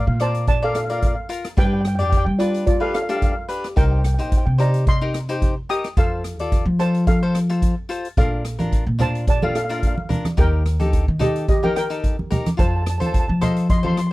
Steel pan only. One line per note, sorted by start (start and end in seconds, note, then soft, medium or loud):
0.07 0.14 F5 medium
0.22 0.47 C5 medium
0.22 0.47 A5 medium
0.48 0.62 D5 medium
0.48 0.63 A5 loud
0.64 0.75 A4 medium
0.64 0.75 F5 medium
0.76 0.83 A4 medium
0.76 0.83 F5 medium
0.84 0.90 F5 medium
0.92 0.98 F5 medium
0.99 1.05 F5 medium
1.06 1.13 F5 medium
1.15 1.21 F5 medium
1.58 1.66 B4 medium
1.58 1.64 G5 loud
1.65 1.72 G5 medium
1.73 1.80 G5 medium
1.81 1.86 G5 medium
1.87 1.94 G5 medium
1.95 2.02 G5 medium
2.03 2.08 G5 medium
2.10 2.16 G5 medium
2.17 2.24 G5 medium
2.25 2.33 G5 medium
2.39 2.65 F4 medium
2.39 2.65 D5 medium
2.67 2.80 F4 medium
2.67 2.82 D5 medium
2.81 2.87 A4 medium
2.81 2.87 F5 medium
2.95 3.02 A4 medium
2.95 3.01 F5 medium
3.02 3.09 F5 medium
3.10 3.16 F5 medium
3.17 3.23 F5 medium
3.24 3.31 F5 medium
3.32 3.39 F5 medium
3.77 3.84 A#4 medium
3.77 3.83 G5 medium
3.85 3.90 G5 medium
3.92 3.98 G5 medium
3.99 4.05 G5 soft
4.06 4.13 G5 medium
4.14 4.20 G5 soft
4.21 4.28 G5 medium
4.29 4.36 G5 medium
4.37 4.44 G5 medium
4.46 4.53 G5 medium
4.60 4.85 D5 medium
4.60 4.88 A#5 medium
4.88 5.66 D#5 medium
4.88 5.72 C6 loud
5.70 5.95 G5 medium
5.70 5.95 D#6 loud
5.98 6.49 A4 medium
5.98 6.49 F5 medium
6.80 7.06 C5 medium
6.80 7.08 A5 medium
7.07 7.86 A4 medium
7.07 7.86 F5 medium
8.18 8.96 A4 medium
8.18 9.03 F5 medium
9.01 9.26 C5 medium
9.01 9.29 A5 loud
9.29 9.42 D5 medium
9.29 9.44 A5 medium
9.43 9.54 A4 medium
9.43 9.55 F5 medium
9.56 9.63 A4 medium
9.56 9.63 F5 medium
9.64 9.71 F5 medium
9.72 9.78 F5 medium
9.80 9.86 F5 medium
9.87 9.94 F5 medium
9.96 10.01 F5 medium
10.39 11.17 A#4 medium
10.39 11.18 G5 loud
11.22 11.47 G4 medium
11.22 11.48 D#5 medium
11.49 11.63 G4 medium
11.49 11.64 D#5 medium
11.64 11.70 A#4 medium
11.64 11.69 G5 loud
11.77 12.28 A#4 medium
11.77 12.28 G5 medium
12.59 12.67 C5 medium
12.59 12.67 A5 medium
12.68 12.75 A5 medium
12.76 12.81 A5 medium
12.82 12.88 A5 medium
12.90 12.97 A5 medium
12.98 13.05 A5 medium
13.06 13.12 A5 medium
13.13 13.18 A5 medium
13.20 13.27 A5 medium
13.28 13.35 A5 medium
13.42 13.68 D#5 medium
13.42 13.68 C6 medium
13.70 13.77 D#5 medium
13.70 13.77 C6 medium
13.78 13.85 C6 medium
13.86 13.91 C6 medium
13.93 13.98 C6 medium
13.99 14.06 C6 medium
14.07 14.13 C6 medium